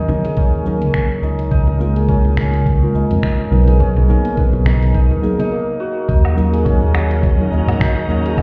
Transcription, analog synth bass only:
0, 0, Header, 1, 2, 480
1, 0, Start_track
1, 0, Key_signature, -6, "minor"
1, 0, Tempo, 571429
1, 1273, Time_signature, 4, 2, 24, 8
1, 7074, End_track
2, 0, Start_track
2, 0, Title_t, "Analog synth bass"
2, 0, Program_c, 0, 38
2, 0, Note_on_c, 0, 39, 97
2, 251, Note_off_c, 0, 39, 0
2, 312, Note_on_c, 0, 39, 83
2, 684, Note_on_c, 0, 37, 95
2, 696, Note_off_c, 0, 39, 0
2, 753, Note_off_c, 0, 37, 0
2, 1026, Note_on_c, 0, 37, 79
2, 1196, Note_off_c, 0, 37, 0
2, 1272, Note_on_c, 0, 37, 101
2, 1811, Note_off_c, 0, 37, 0
2, 1884, Note_on_c, 0, 37, 103
2, 2411, Note_off_c, 0, 37, 0
2, 2474, Note_on_c, 0, 37, 81
2, 2561, Note_off_c, 0, 37, 0
2, 2612, Note_on_c, 0, 41, 92
2, 2677, Note_off_c, 0, 41, 0
2, 2952, Note_on_c, 0, 35, 103
2, 3491, Note_off_c, 0, 35, 0
2, 3807, Note_on_c, 0, 35, 100
2, 4289, Note_on_c, 0, 39, 97
2, 4301, Note_off_c, 0, 35, 0
2, 4356, Note_off_c, 0, 39, 0
2, 5113, Note_on_c, 0, 39, 99
2, 5652, Note_off_c, 0, 39, 0
2, 5726, Note_on_c, 0, 39, 95
2, 6252, Note_off_c, 0, 39, 0
2, 6312, Note_on_c, 0, 39, 79
2, 6400, Note_off_c, 0, 39, 0
2, 6446, Note_on_c, 0, 44, 94
2, 6514, Note_off_c, 0, 44, 0
2, 6789, Note_on_c, 0, 39, 100
2, 7074, Note_off_c, 0, 39, 0
2, 7074, End_track
0, 0, End_of_file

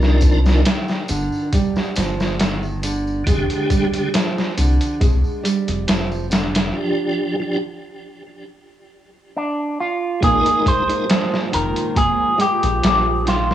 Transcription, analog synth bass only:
0, 0, Header, 1, 2, 480
1, 0, Start_track
1, 0, Tempo, 869565
1, 1803, Time_signature, 4, 2, 24, 8
1, 7476, End_track
2, 0, Start_track
2, 0, Title_t, "Analog synth bass"
2, 0, Program_c, 0, 38
2, 0, Note_on_c, 0, 36, 83
2, 342, Note_off_c, 0, 36, 0
2, 605, Note_on_c, 0, 31, 90
2, 716, Note_off_c, 0, 31, 0
2, 1086, Note_on_c, 0, 31, 80
2, 1783, Note_off_c, 0, 31, 0
2, 1805, Note_on_c, 0, 29, 96
2, 1915, Note_off_c, 0, 29, 0
2, 2529, Note_on_c, 0, 36, 90
2, 2638, Note_off_c, 0, 36, 0
2, 2769, Note_on_c, 0, 36, 84
2, 2878, Note_off_c, 0, 36, 0
2, 3136, Note_on_c, 0, 29, 102
2, 3232, Note_off_c, 0, 29, 0
2, 3251, Note_on_c, 0, 29, 90
2, 3705, Note_off_c, 0, 29, 0
2, 5649, Note_on_c, 0, 34, 92
2, 5757, Note_off_c, 0, 34, 0
2, 6370, Note_on_c, 0, 29, 95
2, 6478, Note_off_c, 0, 29, 0
2, 6606, Note_on_c, 0, 29, 77
2, 6716, Note_off_c, 0, 29, 0
2, 6972, Note_on_c, 0, 34, 100
2, 7070, Note_off_c, 0, 34, 0
2, 7085, Note_on_c, 0, 34, 98
2, 7476, Note_off_c, 0, 34, 0
2, 7476, End_track
0, 0, End_of_file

